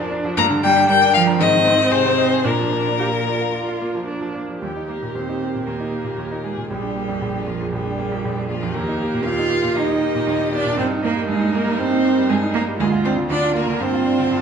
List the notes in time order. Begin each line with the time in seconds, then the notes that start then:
Already playing: F2 D4 G#4 A#4 D5 G#5 A#5
0.00 F3
0.11 D4
0.24 F3
0.37 G2 A#3 A#5
0.50 D3
0.63 G3 D4 G5
0.76 G4
0.88 G3 A#4 G5
1.01 D5
1.14 F3 F5 G5
1.27 A#5
1.38 G#2 D#3 C4 D#5
1.53 D#3
1.65 C4
1.78 D#4
1.90 C3 G#4 C5
2.05 C5
2.18 D#5
2.32 G#5
2.44 A#2 D4 A#4
2.60 F3
2.72 A#3
2.86 D4
2.99 F4 G4
3.13 A#4
3.26 F4 D5
3.41 F5
3.52 F4 D5
3.68 F4
3.81 A#3
3.95 F3
4.07 A#3 D4
4.21 F3
4.35 A#3
4.49 F3
4.61 D#2 G3 G4
4.76 D#4
4.89 A#3 A#4
5.02 A#2
5.14 D#2 C4 C5
5.29 D#4
5.42 A#3
5.54 A#2
5.65 D#2 A#3 G4 A#4
5.80 D#4
5.91 A#3
6.04 A#2
6.18 D#2
6.31 D#4
6.44 G#3 A#3 G#4
6.57 A#2
6.69 A#1 G3 G4 G#4
6.82 D4
6.95 A#3
7.08 F2
7.21 A#1
7.34 D4
7.46 F3 A#3 F4
7.61 F2
7.71 A#1 G3 G4
7.86 D4
7.99 A#3
8.12 F2
8.25 A#1
8.37 D4
8.48 F3 A#3 F4
8.63 F2
8.73 D#2 A#3 G4 A#4
8.88 D#4
9.01 A#3
9.14 A#2
9.24 D#2 F4 F5
9.39 D#4
9.51 A#3
9.63 A#2
9.76 D#2 D#4 G4 D#5
9.89 D#4
10.01 A#3
10.15 A#2
10.27 D#2
10.40 D#4
10.52 A#3 D4 D5
10.65 A#2
10.77 G2 C4 D#4 C5
10.90 D#4
11.03 A#3 A#4
11.16 G3
11.28 G2 G#3 G#4
11.40 D#4
11.53 A#3 A#4
11.65 G3
11.78 G2 C4 C5
11.91 D#4
12.05 A#3
12.18 G3
12.29 G2 G#3 G#4
12.42 D#4
12.54 A#3 A#4
12.67 G3
12.79 D2 G#3 F4 G#4
12.92 F4
13.04 C4 D4 C5
13.17 D3
13.30 D2 D4 F4 D5
13.43 F4
13.55 A#3 D4 A#4
13.67 D3
13.80 G2 C4 F4 C5
13.94 F4
14.06 D4
14.19 D3
14.31 G2